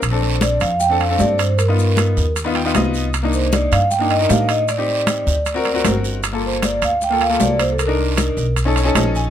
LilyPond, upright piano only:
\new Staff \with { instrumentName = "Upright piano" } { \time 4/4 \key bes \major \tempo 4 = 155 << { r1 | r2 r8 g''8 dis''4 | r1 | r1 |
r1 | r2 r8 cis''8 dis''8 aes''8 | } \\ { r16 <c' d' a'>4. r8 <c' d' a'>16 r16 <c' d' a'>4 r16 | r16 <b dis' f'>4. r8 <b dis' f'>16 r16 <b dis' f'>4 r16 | r16 <bes d' ees'>4. r8 <bes d' ees'>16 r16 <d' ees' bes'>4 r16 | r16 <c' ees' g'>4. r8 <c' fis' bes'>16 r16 <c' fis' bes'>4 r16 |
r16 <bes f' a'>4. r8 <bes f' a'>16 r16 <bes f' a'>4 r16 | r16 <d' ees' bes'>4. r8 <cis' dis' a'>16 r16 <cis' dis' a'>4 r16 | } >> }